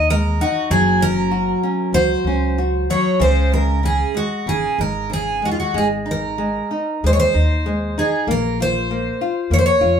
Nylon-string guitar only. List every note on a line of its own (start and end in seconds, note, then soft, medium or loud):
0.10 0.39 G#3 medium
0.41 0.70 D#4 medium
0.71 2.89 F#3 medium
1.01 1.31 C#4 medium
1.31 1.62 F#4 medium
1.63 1.93 C#4 medium
1.95 2.25 F#4 medium
2.27 2.57 C#4 medium
2.58 2.88 F#4 medium
2.90 3.20 F#3 medium
3.20 3.82 C#3 medium
3.52 3.82 G#3 soft
3.83 4.14 C#3 soft
4.14 4.45 G#3 medium
4.47 4.78 C#3 soft
4.79 5.09 G#3 soft
5.10 5.41 C#3 medium
5.42 5.73 G#3 soft
5.74 6.37 G#3 medium
6.06 6.38 D#4 soft
6.38 6.70 G#3 medium
6.71 7.02 D#4 soft
7.04 7.35 G#3 medium
7.34 7.65 D#4 medium
7.66 7.96 G#3 medium
7.98 8.28 D#4 medium
8.28 8.90 A#3 medium
8.60 8.90 F4 medium
8.91 9.21 A#3 medium
9.21 9.51 F4 medium
9.51 9.81 A#3 medium
9.81 10.00 F4 medium